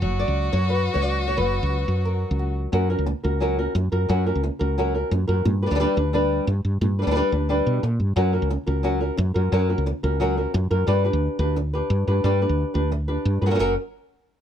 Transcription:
0.01 fretless electric bass F#1, nylon-string guitar F#3, violin F#4
0.19 nylon-string guitar D5
0.28 fretless electric bass C#2
0.53 fretless electric bass F#2, nylon-string guitar C#5
0.70 nylon-string guitar B4
0.94 fretless electric bass C#2, nylon-string guitar C#5
1.02 nylon-string guitar D5
1.28 nylon-string guitar C#5
1.37 fretless electric bass F#1, nylon-string guitar F#3 B4
1.63 fretless electric bass C#2
1.88 fretless electric bass F#2
2.05 nylon-string guitar A#4
2.31 fretless electric bass C#2
2.39 nylon-string guitar F#4
2.72 fretless electric bass F#2, nylon-string guitar F#3 C#4 F#4 A#4
2.90 nylon-string guitar C#4 F#4 A#4
2.99 fretless electric bass C#2
3.06 muted nylon-string guitar stroke
3.24 fretless electric bass C#2, nylon-string guitar C#4 F#4 A#4
3.40 nylon-string guitar F#3 C#4 F#4 A#4
3.59 nylon-string guitar C#4 F#4 A#4
3.75 fretless electric bass F#2, muted nylon-string guitar stroke
3.92 fretless electric bass F#2, nylon-string guitar C#4 F#4 A#4
4.09 fretless electric bass F#2, nylon-string guitar F#3 C#4 F#4 A#4
4.26 nylon-string guitar C#4 F#4 A#4
4.35 fretless electric bass C#2
4.43 muted nylon-string guitar stroke
4.59 fretless electric bass C#2, nylon-string guitar C#4 F#4 A#4
4.78 nylon-string guitar F#3 C#4 F#4 A#4
4.94 nylon-string guitar C#4 F#4 A#4
5.11 fretless electric bass F#2, muted nylon-string guitar stroke
5.28 fretless electric bass F#2, nylon-string guitar C#4 F#4 A#4
5.45 fretless electric bass G2, muted nylon-string guitar stroke
5.62 nylon-string guitar G3 D4 G4 B4
5.67 nylon-string guitar G3 G4 B4
5.71 fretless electric bass D2, nylon-string guitar D4 G4 B4
5.75 nylon-string guitar G3 D4 G4 B4
5.80 nylon-string guitar G3 D4 G4 B4
5.96 fretless electric bass D2, nylon-string guitar D4 G4 B4
6.13 nylon-string guitar G3 D4 G4 B4
6.47 fretless electric bass G2, muted nylon-string guitar stroke
6.65 fretless electric bass G2
6.81 fretless electric bass G2, muted nylon-string guitar stroke
6.99 nylon-string guitar G3 D4 G4 B4
7.03 fretless electric bass D2, nylon-string guitar G3 G4 B4
7.07 nylon-string guitar D4 G4 B4
7.11 nylon-string guitar G3 D4 G4 B4
7.15 nylon-string guitar G3 D4 G4 B4
7.32 fretless electric bass D2, nylon-string guitar D4 G4
7.49 nylon-string guitar G3 D4 G4 B4
7.67 fretless electric bass B2
7.83 fretless electric bass A#2, muted nylon-string guitar stroke
8.00 fretless electric bass G2
8.16 fretless electric bass F#2, nylon-string guitar F#3 C#4 F#4 A#4
8.33 nylon-string guitar C#4 F#4 A#4
8.42 fretless electric bass C#2
8.50 muted nylon-string guitar stroke
8.67 fretless electric bass C#2, nylon-string guitar C#4 F#4 A#4
8.83 nylon-string guitar F#3 C#4 F#4 A#4
9.01 nylon-string guitar C#4 F#4 A#4
9.17 fretless electric bass F#2, muted nylon-string guitar stroke
9.34 fretless electric bass F#2, nylon-string guitar C#4 F#4 A#4
9.52 fretless electric bass F#2, nylon-string guitar F#3 C#4 F#4 A#4
9.69 nylon-string guitar C#4 F#4 A#4
9.78 fretless electric bass C#2
9.86 muted nylon-string guitar stroke
10.03 fretless electric bass C#2, nylon-string guitar C#4 F#4 A#4
10.20 nylon-string guitar F#3 C#4 F#4 A#4
10.37 nylon-string guitar C#4 F#4 A#4
10.54 fretless electric bass F#2, muted nylon-string guitar stroke
10.71 fretless electric bass F#2, nylon-string guitar C#4 F#4 A#4
10.87 fretless electric bass G2, nylon-string guitar G3 D4 G4 B4
11.05 nylon-string guitar D4 G4 B4
11.13 fretless electric bass D2
11.39 fretless electric bass D2, nylon-string guitar D4 G4 B4
11.56 muted nylon-string guitar stroke
11.73 nylon-string guitar D4 G4 B4
11.90 fretless electric bass G2
12.07 fretless electric bass G2, nylon-string guitar D4 G4 B4
12.24 fretless electric bass G2, nylon-string guitar G3 D4 G4 B4
12.42 nylon-string guitar D4 G4 B4
12.49 fretless electric bass D2
12.74 fretless electric bass D2, nylon-string guitar D4 G4 B4
12.92 muted nylon-string guitar stroke
13.08 nylon-string guitar D4 G4 B4
13.25 fretless electric bass G2
13.41 fretless electric bass G2, nylon-string guitar D4 G4 B4
13.46 nylon-string guitar F#3 C#4 F#4 A#4
13.50 nylon-string guitar F#3 C#4 F#4 A#4
13.55 nylon-string guitar F#3 C#4 F#4 A#4
13.59 fretless electric bass F#1, nylon-string guitar F#3 C#4 F#4 A#4

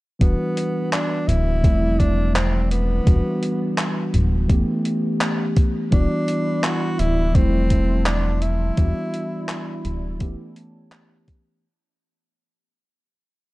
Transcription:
0.19 analog synth bass E1, tine electric piano E3 G3 B3 D4 F#4, tenor saxophone B3, kick, closed hi-hat
0.57 closed hi-hat
0.92 tenor saxophone D4, clap, closed hi-hat
1.28 analog synth bass D1, tenor saxophone E4, closed hi-hat
1.62 analog synth bass E1, tine electric piano F3 G3 A3 C4 E4, kick, closed hi-hat
2.00 tenor saxophone D4, kick, closed hi-hat
2.35 tenor saxophone C4, clap, closed hi-hat
2.71 tenor saxophone B3, closed hi-hat
3.04 analog synth bass E1, tine electric piano E3 G3 B3 D4 F#4, kick, closed hi-hat
3.43 closed hi-hat
3.78 clap, closed hi-hat
4.14 analog synth bass D1, closed hi-hat
4.48 analog synth bass E1, tine electric piano E3 A3 B3 C#4 G4, kick, closed hi-hat
4.85 closed hi-hat
5.21 clap, closed hi-hat
5.57 kick, closed hi-hat
5.91 analog synth bass E1, tine electric piano E3 G3 B3 D4 F#4, tenor saxophone D4, ambient pad E4 D5 B5, kick, closed hi-hat
6.28 closed hi-hat
6.64 tenor saxophone F#4, clap, closed hi-hat
6.99 analog synth bass D1, tenor saxophone E4, closed hi-hat
7.33 analog synth bass E1, tine electric piano F3 G3 A3 C4 E4, ambient pad F3 E5 A5 C6, tenor saxophone C4, kick, closed hi-hat
7.70 kick, closed hi-hat
8.06 tenor saxophone D4, clap, closed hi-hat
8.42 tenor saxophone E4, closed hi-hat
8.76 analog synth bass E1, tine electric piano E3 G3 B3 D4 F#4, ambient pad E4 D5 B5, kick, closed hi-hat
9.14 closed hi-hat
9.49 clap, closed hi-hat
9.85 analog synth bass D1, closed hi-hat
10.19 analog synth bass E1, tine electric piano E3 A3 B3 C#4 G4, ambient pad C#5 A5, kick, closed hi-hat
10.56 closed hi-hat
10.92 clap, closed hi-hat
11.28 kick, closed hi-hat

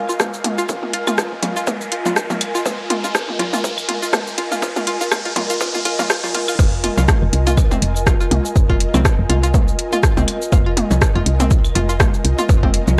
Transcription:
Already playing: fm bass F1, ambient pad F4 A#4 D#5 G#5, synth texture F5, riser
0.09 synth pluck F4, cabasa
0.20 kick, cross-stick, high tom, percussion blips, cabasa
0.34 cabasa
0.44 fm bass C2, closed hi-hat, high tom
0.58 synth pluck F4, cabasa
0.69 fm bass F1, kick, percussion blips, cabasa
0.83 high tom
0.93 synth pluck F4, closed hi-hat
1.07 fm bass C2, synth pluck F4, high tom, cabasa, claves
1.18 kick, cross-stick, percussion blips, cabasa
1.32 fm bass F1
1.43 fm bass C2, closed hi-hat, high tom, percussion blips
1.56 synth pluck F4, cabasa
1.67 kick, high tom, percussion blips, cabasa
1.81 cabasa
1.92 synth pluck F4, closed hi-hat
2.06 synth pluck F4, high tom, percussion blips, cabasa
2.16 kick, cross-stick, percussion blips, cabasa
2.30 fm bass C2, high tom, percussion blips, cabasa
2.41 closed hi-hat, claves
2.55 synth pluck F4, cabasa
2.66 fm bass F1, kick, high tom, percussion blips, cabasa
2.90 synth pluck F4, closed hi-hat, high tom
3.04 fm bass C2, synth pluck F4, cabasa
3.15 kick, cross-stick, percussion blips, cabasa
3.29 fm bass F1, high tom
3.39 fm bass C2, synth pluck F4, closed hi-hat, percussion blips
3.53 synth pluck F4, high tom, cabasa
3.64 kick, percussion blips, cabasa
3.78 cabasa, claves
3.88 fm bass F1, synth pluck F4, closed hi-hat, high tom
4.02 synth pluck F4, cabasa
4.13 kick, cross-stick, high tom, percussion blips, cabasa
4.27 cabasa
4.38 fm bass C2, synth pluck F4, closed hi-hat
4.52 synth pluck F4, high tom, cabasa
4.62 fm bass F1, synth pluck F4, kick, percussion blips, cabasa
4.76 synth pluck F4, kick, high tom, cabasa
4.87 synth pluck F4, closed hi-hat
5.01 fm bass C2, synth pluck F4, cabasa
5.11 synth pluck F4, kick, cross-stick, high tom, percussion blips, cabasa, claves
5.25 fm bass F1, synth pluck F4, closed hi-hat
5.36 fm bass C2, synth pluck F4, closed hi-hat, high tom, percussion blips
5.50 synth pluck F4, closed hi-hat, cabasa
5.61 synth pluck F4, kick, percussion blips, cabasa
5.74 synth pluck F4, high tom, cabasa
5.85 fm bass F2, synth pluck F4, closed hi-hat
5.99 synth pluck F4, high tom, percussion blips, cabasa
6.10 synth pluck F4, kick, cross-stick, percussion blips, cabasa
6.24 synth pluck F4, percussion blips, cabasa
6.34 synth pluck F4, closed hi-hat, high tom
6.48 synth pluck F4, cabasa, claves
6.59 fm bass F1, kick, crash, percussion blips, cabasa
6.84 synth pluck F4, closed hi-hat, high tom
6.97 fm bass C2, synth pluck F4, percussion blips, cabasa
7.08 kick, cross-stick, high tom, percussion blips, cabasa
7.22 fm bass F1
7.33 fm bass C2, closed hi-hat
7.47 synth pluck F4, closed hi-hat, high tom, cabasa
7.57 kick, percussion blips, cabasa, claves
7.71 synth pluck C4, high tom, cabasa
7.82 fm bass F1, closed hi-hat
7.96 cabasa
8.07 synth pluck F4, kick, cross-stick, high tom, percussion blips, cabasa
8.20 synth pluck F4, cabasa
8.31 fm bass C2, closed hi-hat, high tom
8.45 cabasa
8.56 fm bass F1, kick, percussion blips, cabasa
8.70 synth pluck F4, kick, high tom
8.80 closed hi-hat
8.94 fm bass C2, synth pluck C4, high tom, percussion blips, cabasa, claves
9.05 kick, cross-stick, percussion blips, cabasa
9.19 fm bass F1
9.29 fm bass C2, synth pluck F4, closed hi-hat, high tom
9.43 synth pluck F4, closed hi-hat, cabasa
9.54 kick, high tom, percussion blips, cabasa
9.68 cabasa
9.79 closed hi-hat
9.93 synth pluck F4, high tom, cabasa
10.03 kick, cross-stick, percussion blips, cabasa
10.17 fm bass C2, synth pluck C4, high tom, cabasa
10.28 closed hi-hat, claves
10.42 cabasa
10.52 fm bass F1, synth pluck F4, kick, high tom, percussion blips, cabasa
10.66 synth pluck F4
10.77 closed hi-hat, high tom
10.91 fm bass C2, percussion blips, cabasa
11.02 kick, cross-stick, percussion blips, cabasa
11.15 fm bass F1, synth pluck F4, high tom
11.26 fm bass C2, closed hi-hat
11.40 synth pluck C4, closed hi-hat, high tom, cabasa
11.51 kick, percussion blips, cabasa
11.65 cabasa, claves
11.75 fm bass F1, synth pluck F4, closed hi-hat, high tom
11.89 synth pluck F4, cabasa
12.00 kick, cross-stick, high tom, percussion blips, cabasa
12.14 cabasa
12.25 fm bass C2, closed hi-hat
12.38 synth pluck F4, high tom, cabasa
12.49 fm bass F1, kick, percussion blips, cabasa
12.63 synth pluck C4, kick, high tom
12.74 closed hi-hat
12.88 fm bass C2, percussion blips, cabasa

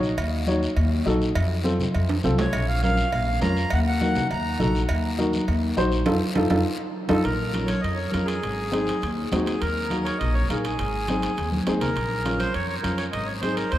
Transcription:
Already playing: upright bass A#1
0.03 short guiro
0.18 upright bass D#2, cowbell, long guiro
0.47 upright piano D#4 F#4 C#5, high conga, short guiro
0.63 short guiro
0.76 upright bass D#2, cowbell, long guiro
1.06 upright bass A#1, upright piano D#4 F#4 A4, high conga, short guiro
1.22 short guiro
1.35 upright bass F2, cowbell, long guiro
1.64 upright piano C4 F4 A4, high conga, short guiro
1.80 high conga, low conga, short guiro
1.94 upright bass F2, cowbell, long guiro
2.09 high timbale
2.23 upright bass C2, upright piano C4 F4 A4, high conga, low conga, short guiro
2.38 accordion C#5, low timbale, short guiro
2.53 upright bass A#1, cowbell, long guiro
2.68 accordion F5
2.83 upright piano C#4 F4 A#4, accordion F5, high conga, short guiro
2.97 short guiro
3.12 upright bass A#1, accordion F5, cowbell, long guiro
3.41 upright bass F2, upright piano C#4 F4 A#4, accordion A#5, high conga, low timbale, short guiro
3.57 short guiro
3.70 upright bass D#2, accordion F#5, cowbell, long guiro
3.87 accordion F#5
4.01 upright piano D#4 F#4 A#4, high conga, short guiro
4.15 high conga, low conga, short guiro
4.30 upright bass D#2, accordion A#5, cowbell, long guiro
4.59 upright bass A#1, upright piano D#4 F#4 A4, accordion A#5, high conga, low conga, short guiro
4.75 short guiro
4.89 upright bass D#2, cowbell, long guiro
5.18 upright piano D#4 F#4 A#4, high conga, short guiro
5.33 high conga, short guiro
5.48 upright bass D#2, cowbell, long guiro
5.77 upright bass A#1, upright piano D#4 F#4 C5, high conga, short guiro
5.92 short guiro
6.06 upright bass F2, upright piano D#4 F4 A4, high conga, high timbale, long guiro
6.35 upright bass F2, upright piano D#4 F4 A4, high conga, high timbale, long guiro
6.50 upright bass F2, upright piano D#4 F4 A4, high conga, high timbale, long guiro
7.09 upright bass F2, upright piano D#4 F4 A4, accordion A4, high conga, high timbale, long guiro
7.23 upright bass A#1, accordion A#4, high timbale, long guiro
7.53 upright piano C#4 F4 A#4, high conga, high timbale, short guiro
7.66 accordion C#5, high conga, high timbale, short guiro
7.81 upright bass F2, accordion D#5, high timbale, long guiro
7.95 accordion C#5
8.09 upright piano C#4, accordion A#4, high conga
8.13 upright bass F2, upright piano F4 A#4, high timbale, short guiro
8.25 accordion G#4, high timbale, short guiro
8.43 upright bass G#1, high timbale, long guiro
8.72 upright piano C4 D#4 G#4, high conga, high timbale, short guiro
8.87 high conga, high timbale, short guiro
9.02 upright bass D#2, high timbale, long guiro
9.32 upright bass D#2, upright piano C4 D#4 F#4, high conga, high timbale, low timbale, short guiro
9.46 accordion G#4, high timbale, short guiro
9.61 upright bass D#2, accordion A#4, high timbale, long guiro
9.90 upright piano A#3 D#4 F#4, high conga, high timbale, short guiro
10.04 accordion C#5, high timbale, short guiro
10.19 upright bass A#1, accordion D#5, high timbale, long guiro
10.34 accordion C#5
10.49 upright bass A#1, upright piano A#3 D#4 G#4, accordion A#4, high conga, high timbale, short guiro
10.65 accordion G#4, high timbale, short guiro
10.79 upright bass G#1, high timbale, long guiro
11.08 upright piano C4 D#4 G#4, high conga, high timbale, short guiro
11.22 high timbale, short guiro
11.37 upright bass D#2, high timbale, long guiro
11.52 high conga
11.66 upright bass D#2, upright piano C4 D#4 G#4, high timbale, low timbale, short guiro
11.81 accordion A#4, low conga, high timbale, short guiro
11.96 upright bass A#1, high timbale, long guiro
12.25 upright piano C#4 F4 A#4, high conga, high timbale, short guiro
12.39 accordion C5, high conga, high timbale, short guiro
12.54 upright bass F2, accordion C#5, high timbale, long guiro
12.68 accordion C#5
12.82 upright bass F2, upright piano C#4 F4 A#4, accordion A#4, high conga, high timbale, short guiro
12.98 accordion C#5, high timbale, short guiro
13.12 upright bass G#1, accordion D#5, high timbale, long guiro
13.26 accordion C#5
13.41 upright piano C4 D#4 G#4, accordion C5, high conga, high timbale, short guiro
13.56 accordion A#4, high timbale, short guiro
13.71 upright bass D#2, accordion C5, high timbale, long guiro

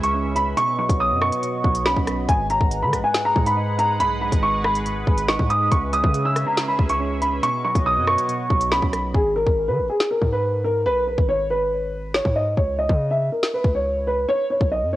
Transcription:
Already playing: 808-style bass C#2, synth keys C#3 G#3, analog synth pad C#4 G#4 B4 E5
0.04 upright piano C#6, closed hi-hat
0.14 synth keys C#4
0.36 upright piano B5, closed hi-hat
0.57 synth keys B2, analog synth pad B3 F#4 C#5 D#5, upright piano C#6, closed hi-hat
0.79 synth keys F#3, upright piano C#6
0.89 808-style bass B1, kick, closed hi-hat
1.00 synth keys B2, upright piano D#6
1.11 808-style bass F#2
1.21 synth keys B2, upright piano C#6, cross-stick
1.32 closed hi-hat
1.43 synth keys B2, closed hi-hat
1.64 808-style bass B1, synth keys F#3, kick
1.75 closed hi-hat
1.85 synth keys C#4, upright piano B5, snare
1.97 808-style bass B1, kick
2.07 cross-stick, closed hi-hat
2.28 808-style bass G#1, synth keys G#2, analog synth pad G#3 G#4 B4 F#5, upright piano G#5, kick, closed hi-hat
2.50 synth keys G#3, upright piano A#5, closed hi-hat
2.61 808-style bass G#1, kick
2.71 synth keys G#2, closed hi-hat
2.82 808-style bass D#3, upright piano B5
2.93 808-style bass G#1, synth keys G#2, cross-stick, closed hi-hat
3.04 upright piano G#5
3.14 synth keys G#2, snare, closed hi-hat
3.25 upright piano A#5
3.36 808-style bass G#2, synth keys G#3, kick
3.46 upright piano B5, closed hi-hat
3.57 synth keys D#4
3.79 upright piano A#5, closed hi-hat
4.00 808-style bass B1, synth keys G#2, upright piano B5, closed hi-hat
4.22 synth keys G#3, upright piano B5
4.32 808-style bass G#1, kick, closed hi-hat
4.43 synth keys G#2, upright piano C#6
4.64 synth keys G#2, upright piano B5, cross-stick
4.75 closed hi-hat
4.86 synth keys G#2, closed hi-hat
5.07 808-style bass G#1, synth keys G#3, kick
5.18 closed hi-hat
5.29 synth keys D#4, upright piano C#6, snare
5.39 808-style bass G#2, kick
5.50 upright piano D#6, closed hi-hat
5.71 808-style bass C#2, synth keys C#3, analog synth pad C#4 G#4 E5, upright piano C#6, kick, closed hi-hat
5.93 synth keys G#3, upright piano D#6, closed hi-hat
6.04 808-style bass C#3, kick
6.14 synth keys C#3, closed hi-hat
6.25 upright piano E6
6.36 synth keys C#3, cross-stick, closed hi-hat
6.47 upright piano A#5
6.57 synth keys C#3, snare, closed hi-hat
6.68 upright piano B5
6.78 808-style bass C#2, synth keys G#3, kick
6.89 upright piano C#6, closed hi-hat
7.00 synth keys C#4
7.22 upright piano B5, closed hi-hat
7.43 synth keys B2, analog synth pad B3 F#4 C#5 D#5, upright piano C#6, closed hi-hat
7.64 synth keys F#3, upright piano C#6
7.75 808-style bass B1, kick, closed hi-hat
7.85 synth keys B2, upright piano D#6
7.97 808-style bass F#2
8.07 synth keys B2, upright piano C#6, cross-stick
8.18 closed hi-hat
8.28 synth keys B2, closed hi-hat
8.50 808-style bass B1, synth keys F#3, kick
8.61 closed hi-hat
8.71 synth keys C#4, upright piano B5, snare
8.82 808-style bass B1, kick
8.93 cross-stick, closed hi-hat
9.14 808-style bass G#1, upright piano G#4, kick
9.36 upright piano A#4
9.47 808-style bass G#1, kick
9.68 808-style bass D#3, upright piano B4
9.79 808-style bass G#1
9.89 upright piano G#4
10.00 snare
10.11 upright piano A#4
10.22 808-style bass G#2, kick
10.32 upright piano B4
10.64 upright piano A#4
10.86 808-style bass B1, upright piano B4
11.07 upright piano B4
11.18 808-style bass G#1, kick
11.29 upright piano C#5
11.50 upright piano B4
12.14 upright piano C#5, snare
12.25 808-style bass G#2, kick
12.36 upright piano D#5
12.57 808-style bass C#2, upright piano C#5, kick
12.79 upright piano D#5
12.89 808-style bass C#3, kick
13.11 upright piano E5
13.32 upright piano A#4
13.43 snare
13.54 upright piano B4
13.64 808-style bass C#2, kick
13.75 upright piano C#5
14.07 upright piano B4
14.29 upright piano C#5
14.50 upright piano C#5
14.61 808-style bass B1, kick
14.72 upright piano D#5
14.82 808-style bass F#2
14.93 upright piano C#5

